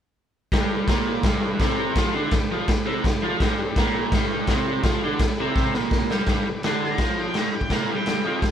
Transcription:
0.52 overdriven electric guitar G2 G3, transistor combo organ G4 D5 B5, kick, snare, crash
0.88 overdriven electric guitar A#2 A#3, kick, snare, crash
1.23 overdriven electric guitar G2 G3, kick, snare, crash
1.60 overdriven electric guitar C3 C4, kick, snare, crash
1.95 overdriven electric guitar F3 F4, kick, snare, crash
2.15 overdriven electric guitar D3 D4
2.31 overdriven electric guitar G2, kick, snare, crash
2.52 overdriven electric guitar F3 F4
2.68 overdriven electric guitar G2, kick, snare, crash
2.86 overdriven electric guitar C3 C4
3.04 overdriven electric guitar G2, kick, snare, crash
3.23 overdriven electric guitar F3 F4
3.39 overdriven electric guitar G2 G3, transistor combo organ G4 D5 B5, kick, snare, crash
3.76 overdriven electric guitar A#2 A#3, kick, snare, crash
4.12 overdriven electric guitar G2 G3, kick, snare, crash
4.47 overdriven electric guitar C3 C4, kick, snare, crash
4.83 overdriven electric guitar F3 F4, kick, snare, crash
5.04 overdriven electric guitar D3 D4
5.19 overdriven electric guitar G2, kick, snare, crash
5.40 overdriven electric guitar C3 C4
5.56 kick, snare
5.74 overdriven electric guitar A#2 A#3, snare
5.91 kick, snare
6.10 overdriven electric guitar G2 G3, snare
6.26 overdriven electric guitar G2, transistor combo organ G4 B4 D5, kick, snare, crash
6.31 overdriven electric guitar G3
6.47 muted overdriven electric guitar stroke
6.63 overdriven electric guitar D3 D4, snare, crash
6.85 lead electric guitar A#5
6.98 overdriven electric guitar F3 F4, kick, snare, crash
7.20 lead electric guitar G5
7.34 overdriven electric guitar G2 G3, lead electric guitar A#5, snare, crash
7.55 overdriven electric guitar G2, lead electric guitar G5
7.61 kick
7.70 overdriven electric guitar A#2 A#3, kick, snare, crash
7.74 lead electric guitar F5
7.90 overdriven electric guitar G2 G3
7.95 lead electric guitar G5
8.06 snare, crash
8.25 overdriven electric guitar F2 F3
8.42 muted overdriven electric guitar stroke, kick, snare, crash

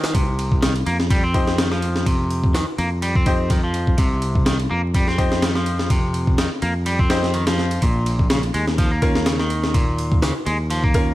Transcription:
Already playing: clean electric guitar D#3
0.04 snare, ride
0.15 fingered electric bass C2, clean electric guitar C3, kick, ride
0.39 ride
0.52 kick
0.62 clean electric guitar D#3, snare, ride
0.76 ride
0.86 fingered electric bass F2, clean electric guitar A#3, ride
1.00 snare
1.10 clean electric guitar G3, kick, ride
1.23 clean electric guitar C4
1.34 grand piano D#4 G4 C5, kick, ride
1.47 snare
1.58 clean electric guitar D#3, snare, ride
1.72 clean electric guitar F3, snare
1.82 ride
1.96 snare
2.06 clean electric guitar C3, kick, ride
2.31 ride
2.44 kick
2.54 clean electric guitar D#3, snare, ride
2.78 fingered electric bass F2, clean electric guitar A#3, ride
3.02 clean electric guitar G3, ride
3.15 clean electric guitar C4, kick
3.26 grand piano D#4 G4 C5, kick, ride
3.50 clean electric guitar D#3, kick, ride
3.64 clean electric guitar F3
3.74 ride
3.87 kick
3.98 fingered electric bass C2, clean electric guitar C3, kick, ride
4.22 ride
4.35 kick
4.46 clean electric guitar D#3, snare, ride
4.60 ride
4.71 fingered electric bass F2, clean electric guitar A#3
4.94 clean electric guitar G3, kick, ride
5.08 clean electric guitar C4, snare
5.18 grand piano D#4 G4 C5, kick, ride
5.32 snare
5.42 clean electric guitar D#3, snare, ride
5.55 clean electric guitar F3, snare
5.66 ride
5.79 snare
5.90 clean electric guitar C3, kick, ride
6.14 ride
6.27 kick
6.38 clean electric guitar D#3, snare, ride
6.62 fingered electric bass F2, clean electric guitar A#3, ride
6.86 clean electric guitar G3, ride
6.99 clean electric guitar C4, kick
7.10 grand piano D#4 G4 C5, snare, ride
7.23 snare
7.34 clean electric guitar D#3, ride
7.47 clean electric guitar F3, snare, ride
7.58 snare
7.71 ride
7.82 fingered electric bass A#1, clean electric guitar A#2, kick, ride
8.06 ride
8.19 kick
8.30 clean electric guitar C#3, snare, ride
8.43 ride
8.54 fingered electric bass D#2, clean electric guitar G#3, ride
8.67 snare
8.78 clean electric guitar F3, kick, ride
8.91 clean electric guitar A#3
9.02 grand piano C#4 F4 A#4, kick, ride
9.15 snare
9.26 clean electric guitar C#3, snare, ride
9.39 clean electric guitar D#3, snare
9.50 ride
9.64 snare
9.74 clean electric guitar A#2, kick, ride
9.98 ride
10.12 kick
10.22 clean electric guitar C#3, snare, ride
10.46 fingered electric bass D#2, clean electric guitar G#3, ride
10.70 clean electric guitar F3, ride
10.84 clean electric guitar A#3, kick
10.94 grand piano C#4 F4 A#4, kick, ride

